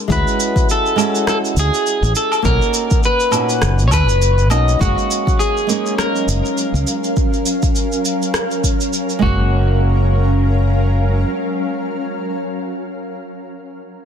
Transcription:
0.08 D2 G#3 C#4 E4, kick, shaker
0.12 F#4 B4
0.27 shaker
0.40 shaker
0.56 kick, shaker
0.69 A4, shaker
0.86 shaker
0.96 G#3 C#4 E4, low woodblock, shaker
1.00 F#4
1.15 shaker
1.27 A4, cross-stick, shaker
1.45 shaker
1.56 D2 G#4, shaker
1.74 shaker
1.86 shaker
2.03 A1, shaker
2.16 A4, shaker
2.32 low woodblock, shaker
2.42 B1 A#3 C#4 D#4 A#4, kick, shaker
2.47 F#4
2.62 shaker
2.74 shaker
2.91 kick, shaker
3.03 B4, shaker
3.20 shaker
3.31 A#2 C#4 D#4 F#4, low woodblock, shaker
3.49 shaker
3.62 F#1, cross-stick, shaker
3.79 shaker
3.88 C#5, low woodblock
3.92 D#2 B4, kick, shaker
4.09 F#1, shaker
4.22 shaker
4.38 shaker
4.50 B1 A#3 C#4 D#4 F#4 D#5, low woodblock, shaker
4.68 shaker
4.79 F#1 F#3 G#3 A#3 C#4 F#4 A#4 F5, kick, shaker
4.83 F5
4.98 shaker
5.11 shaker
5.27 kick, shaker
5.39 G#4, shaker
5.57 shaker
5.67 G#3 A#3 C#4, shaker
5.71 D#4
5.86 shaker
5.98 A#4, cross-stick, shaker
6.16 shaker
6.28 F#1, shaker
6.45 shaker
6.58 shaker
6.74 C#2, shaker
6.87 shaker
7.04 shaker
7.17 kick, shaker
7.33 shaker
7.46 shaker
7.62 kick, shaker
7.76 shaker
7.92 shaker
8.05 shaker
8.22 shaker
8.34 cross-stick, shaker
8.51 shaker
8.64 kick, shaker
8.81 shaker
8.93 shaker
9.09 shaker
9.19 F#1 F#3 G#3 A#3 C#4 F#4 A#4 F5, kick
9.23 C#4 F5

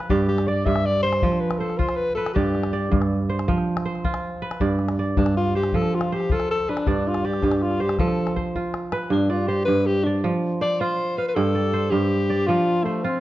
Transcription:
Already playing: F3 F4 B4
0.10 G2 G4 D5, calabash thump
0.29 G4, calabash click
0.38 calabash click
0.48 D5
0.66 G2 E5, calabash thump
0.76 calabash click
0.86 D5
1.03 C5
1.13 calabash click
1.22 F3, calabash thump
1.32 calabash click
1.40 B4
1.51 calabash click
1.59 A4 C5
1.70 calabash click
1.78 F4 C5, calabash thump
1.89 calabash click
1.96 B4
2.15 A4 B4
2.26 calabash click
2.34 G2 G4 D5, calabash thump
2.55 calabash click
2.63 calabash click
2.73 D5
2.92 G2, calabash thump
3.02 calabash click
3.30 C5
3.39 calabash click
3.48 F3, calabash thump
3.58 calabash click
3.77 calabash click
3.86 C5
3.95 calabash click
4.04 F4, calabash thump
4.14 calabash click
4.42 B4
4.51 calabash click
4.60 G2 D5, calabash thump
4.79 calabash click
4.89 calabash click
4.99 D5
5.17 G2 D4, calabash thump
5.26 calabash click
5.37 F4
5.55 G4 C5
5.63 calabash click
5.73 F3 A4, calabash thump
5.82 calabash click
5.95 F4
6.01 calabash click
6.12 G4 C5
6.20 calabash click
6.29 F4 A4, calabash thump
6.40 calabash click
6.51 A4
6.69 D4 B4
6.77 calabash click
6.87 G2 D5, calabash thump, calabash click
7.08 F4
7.14 calabash click
7.24 G4 D5
7.33 calabash click
7.42 G2, calabash thump, calabash click
7.52 calabash click
7.57 G4
7.61 F4, calabash click
7.71 calabash click
7.80 G4 C5
7.89 calabash click
7.99 F3 A4, calabash thump, calabash click
8.08 calabash click
8.27 calabash click
8.36 C5, calabash thump
8.55 F4, calabash thump
8.74 calabash click
8.92 B4, calabash click
9.10 G2 D4
9.30 F4 D5
9.48 G4 C5
9.65 G2 B4
9.87 G4
10.04 D4 D5
10.24 F3
10.61 C5 D5
10.80 F4 C5
11.17 B4 F5
11.29 B4
11.35 G2 A4 G5
11.55 D5
11.73 C5
11.91 G2 G4
12.30 D5
12.47 F3 F4
12.84 A3 C5
13.04 C4 F4

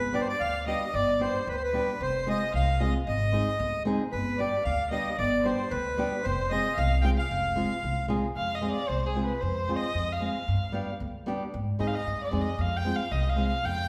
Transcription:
Already playing: G1 B4
0.13 G3 B3 D4 G4 D5
0.21 C5
0.28 D5
0.40 D2 F5
0.66 G3 B3 D4 G4 D#5
0.94 G1 D5
1.19 G3 B3 D4 G4 C5
1.47 D2 B4
1.55 C5
1.62 B4
1.73 G3 B3 D4 G4
2.01 F1 C5
2.27 G#3 C4 F4 G#4 D#5
2.53 C2 F5
2.80 G#3 C4 F4 G#4 D#5
3.07 G#1 D#5
3.32 G#3 C4 D#4 G#4
3.60 D2
3.85 G#3 C4 D#4 G#4
4.12 G1 B4
4.38 G3 B3 D4 G4 D5
4.64 D2 F5
4.90 G3 B3 D4 G4 D#5
5.17 G1 D5
5.43 G3 B3 D4 G4 C5
5.69 D2 B4
5.97 G3 B3 D4 G4
6.22 F1 C5
6.49 G#3 C4 F4 G#4 D#5
6.75 C2 F5
7.02 G#3 C4 F4 G#4 G5
7.16 F5
7.31 F1
7.55 G#3 C4 F4 G#4
7.83 C2
8.08 G#3 C4 F4 G#4
8.36 F2 F5
8.54 D#5
8.61 G#3 C4 F4 G#4
8.71 D5
8.88 C2 C5
9.06 G#4
9.15 G#3 C4 F4 G#4
9.24 B4
9.40 F2 C5
9.68 G#3 C4 F4 G#4
9.76 D#5
9.94 F2
10.12 F5
10.20 G#3 C4 F4 G#4
10.48 G2
10.72 G3 B3 D4 G4
11.00 D2
11.26 G3 B3 D4 G4
11.54 G#2
11.79 G#2 G#3 C4 D#4 G#4 D#5
11.87 F5
11.95 D#5
12.07 G2
12.24 D5
12.31 F2 G#3 C4 D#4 G#4
12.41 D#5
12.58 F2 F5
12.76 G5
12.85 G#3 C4 F4 G#4
12.96 F5
13.11 C2 D#5
13.29 F5
13.36 G#3 C4 F4 G#4
13.47 F5
13.64 F2 G5

